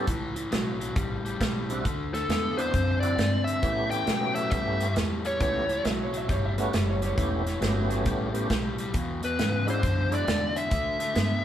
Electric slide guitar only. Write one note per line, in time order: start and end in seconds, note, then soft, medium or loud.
5.87 6.00 E5 medium
6.03 6.16 C#5 medium
6.17 6.30 E5 medium
6.31 6.45 C#5 medium
6.45 6.59 E5 medium
6.59 6.73 C#5 medium
6.74 6.88 E5 medium
6.89 7.03 C#5 medium
7.06 8.33 C#5 medium